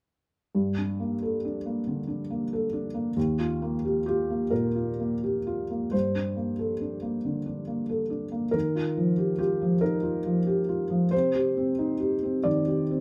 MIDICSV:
0, 0, Header, 1, 2, 480
1, 0, Start_track
1, 0, Key_signature, -2, "minor"
1, 0, Tempo, 892857
1, 292, Time_signature, 6, 3, 24, 8
1, 769, Tempo, 864553
1, 1729, Tempo, 924499
1, 3169, Tempo, 867052
1, 6049, Tempo, 894188
1, 7052, End_track
2, 0, Start_track
2, 0, Title_t, "Felt piano"
2, 0, Program_c, 0, 0
2, 294, Note_on_c, 0, 43, 37
2, 386, Control_c, 0, 64, 127
2, 418, Note_on_c, 0, 62, 29
2, 537, Note_on_c, 0, 58, 31
2, 607, Note_off_c, 0, 62, 0
2, 658, Note_on_c, 0, 69, 31
2, 724, Note_off_c, 0, 58, 0
2, 779, Note_on_c, 0, 62, 34
2, 844, Note_off_c, 0, 69, 0
2, 895, Note_on_c, 0, 58, 30
2, 966, Note_off_c, 0, 62, 0
2, 1014, Note_on_c, 0, 50, 31
2, 1083, Note_off_c, 0, 58, 0
2, 1126, Note_on_c, 0, 62, 32
2, 1202, Note_off_c, 0, 50, 0
2, 1253, Note_on_c, 0, 58, 31
2, 1318, Note_off_c, 0, 62, 0
2, 1379, Note_on_c, 0, 69, 34
2, 1442, Note_off_c, 0, 58, 0
2, 1490, Note_on_c, 0, 62, 36
2, 1565, Note_off_c, 0, 69, 0
2, 1608, Note_on_c, 0, 58, 35
2, 1682, Note_off_c, 0, 62, 0
2, 1707, Note_off_c, 0, 43, 0
2, 1729, Note_off_c, 0, 58, 0
2, 1731, Note_on_c, 0, 39, 44
2, 1738, Control_c, 0, 64, 0
2, 1836, Control_c, 0, 64, 127
2, 1849, Note_on_c, 0, 65, 37
2, 1968, Note_on_c, 0, 58, 37
2, 2034, Note_off_c, 0, 65, 0
2, 2088, Note_on_c, 0, 67, 38
2, 2153, Note_off_c, 0, 58, 0
2, 2189, Note_off_c, 0, 67, 0
2, 2197, Note_on_c, 0, 67, 50
2, 2208, Note_on_c, 0, 65, 40
2, 2322, Note_on_c, 0, 58, 34
2, 2393, Note_off_c, 0, 65, 0
2, 2427, Note_on_c, 0, 70, 52
2, 2434, Note_on_c, 0, 46, 36
2, 2436, Note_off_c, 0, 67, 0
2, 2511, Note_off_c, 0, 58, 0
2, 2558, Note_on_c, 0, 65, 35
2, 2630, Note_off_c, 0, 46, 0
2, 2683, Note_on_c, 0, 58, 34
2, 2755, Note_off_c, 0, 65, 0
2, 2806, Note_on_c, 0, 67, 36
2, 2881, Note_off_c, 0, 58, 0
2, 2927, Note_on_c, 0, 65, 32
2, 3004, Note_off_c, 0, 67, 0
2, 3049, Note_on_c, 0, 58, 31
2, 3121, Note_off_c, 0, 65, 0
2, 3149, Note_off_c, 0, 39, 0
2, 3159, Note_on_c, 0, 72, 53
2, 3164, Note_off_c, 0, 70, 0
2, 3166, Note_on_c, 0, 43, 33
2, 3167, Note_off_c, 0, 58, 0
2, 3178, Control_c, 0, 64, 0
2, 3279, Control_c, 0, 64, 127
2, 3288, Note_on_c, 0, 62, 27
2, 3408, Note_on_c, 0, 58, 28
2, 3482, Note_off_c, 0, 62, 0
2, 3532, Note_on_c, 0, 69, 27
2, 3603, Note_off_c, 0, 58, 0
2, 3653, Note_on_c, 0, 62, 31
2, 3726, Note_off_c, 0, 69, 0
2, 3770, Note_on_c, 0, 58, 29
2, 3847, Note_off_c, 0, 62, 0
2, 3897, Note_on_c, 0, 50, 29
2, 3965, Note_off_c, 0, 58, 0
2, 4014, Note_on_c, 0, 62, 30
2, 4088, Note_off_c, 0, 50, 0
2, 4132, Note_on_c, 0, 58, 28
2, 4206, Note_off_c, 0, 62, 0
2, 4253, Note_on_c, 0, 69, 32
2, 4325, Note_off_c, 0, 58, 0
2, 4369, Note_on_c, 0, 62, 31
2, 4445, Note_off_c, 0, 69, 0
2, 4488, Note_on_c, 0, 58, 32
2, 4563, Note_off_c, 0, 62, 0
2, 4590, Note_off_c, 0, 43, 0
2, 4597, Note_on_c, 0, 70, 56
2, 4609, Note_off_c, 0, 72, 0
2, 4610, Note_on_c, 0, 51, 38
2, 4611, Note_off_c, 0, 58, 0
2, 4623, Control_c, 0, 64, 0
2, 4727, Control_c, 0, 64, 127
2, 4730, Note_on_c, 0, 65, 32
2, 4851, Note_on_c, 0, 53, 33
2, 4924, Note_off_c, 0, 65, 0
2, 4966, Note_on_c, 0, 67, 31
2, 5043, Note_off_c, 0, 53, 0
2, 5071, Note_off_c, 0, 67, 0
2, 5080, Note_on_c, 0, 67, 52
2, 5084, Note_off_c, 0, 70, 0
2, 5088, Note_on_c, 0, 65, 35
2, 5207, Note_on_c, 0, 53, 35
2, 5279, Note_off_c, 0, 65, 0
2, 5315, Note_on_c, 0, 70, 60
2, 5323, Note_off_c, 0, 67, 0
2, 5323, Note_on_c, 0, 63, 36
2, 5398, Note_off_c, 0, 53, 0
2, 5436, Note_on_c, 0, 65, 36
2, 5516, Note_off_c, 0, 63, 0
2, 5561, Note_on_c, 0, 53, 34
2, 5632, Note_off_c, 0, 65, 0
2, 5680, Note_on_c, 0, 67, 40
2, 5755, Note_off_c, 0, 53, 0
2, 5802, Note_on_c, 0, 65, 36
2, 5874, Note_off_c, 0, 67, 0
2, 5919, Note_on_c, 0, 53, 37
2, 5996, Note_off_c, 0, 65, 0
2, 6022, Note_off_c, 0, 51, 0
2, 6035, Note_on_c, 0, 72, 66
2, 6040, Note_off_c, 0, 70, 0
2, 6043, Note_off_c, 0, 53, 0
2, 6045, Note_on_c, 0, 48, 45
2, 6055, Control_c, 0, 64, 0
2, 6138, Control_c, 0, 64, 127
2, 6163, Note_on_c, 0, 67, 35
2, 6282, Note_on_c, 0, 60, 39
2, 6354, Note_off_c, 0, 67, 0
2, 6398, Note_on_c, 0, 63, 36
2, 6473, Note_off_c, 0, 60, 0
2, 6514, Note_on_c, 0, 67, 38
2, 6591, Note_off_c, 0, 63, 0
2, 6635, Note_on_c, 0, 60, 34
2, 6709, Note_off_c, 0, 67, 0
2, 6747, Note_on_c, 0, 74, 60
2, 6755, Note_on_c, 0, 51, 36
2, 6756, Note_off_c, 0, 72, 0
2, 6831, Note_off_c, 0, 60, 0
2, 6877, Note_on_c, 0, 67, 35
2, 6953, Note_off_c, 0, 51, 0
2, 7000, Note_on_c, 0, 60, 33
2, 7052, Note_off_c, 0, 48, 0
2, 7052, Note_off_c, 0, 60, 0
2, 7052, Note_off_c, 0, 67, 0
2, 7052, Note_off_c, 0, 74, 0
2, 7052, End_track
0, 0, End_of_file